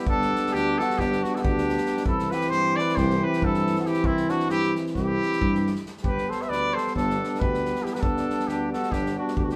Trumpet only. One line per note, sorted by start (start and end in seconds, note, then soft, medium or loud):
0.08 0.54 A4 loud
0.53 0.79 G4 loud
0.78 1.00 A4 medium
0.98 1.24 G4 loud
1.23 1.36 F#4 medium
1.35 1.43 A4 medium
1.41 2.04 G4 loud
2.06 2.32 A4 medium
2.30 2.51 B4 medium
2.49 2.78 C5 loud
2.76 2.97 D5 loud
2.95 3.25 C5 loud
3.23 3.46 B4 medium
3.44 3.80 A4 medium
3.80 3.88 A4 medium
3.87 4.07 G4 medium
4.06 4.31 E4 medium
4.30 4.49 F#4 medium
4.50 4.74 G4 loud
4.96 5.79 G4 loud
6.04 6.31 B4 medium
6.29 6.43 C5 medium
6.41 6.50 E5 medium
6.49 6.75 D5 loud
6.73 6.93 C5 medium
6.95 7.41 A4 medium
7.40 7.84 B4 medium
7.83 7.96 G4 medium
7.94 8.02 B4 medium
8.01 8.49 A4 medium
8.47 8.72 G4 medium
8.73 8.93 A4 medium
8.92 9.17 G4 loud
9.18 9.39 F#4 medium
9.37 9.45 G4 medium
9.44 9.52 F#4 medium
9.51 9.56 G4 loud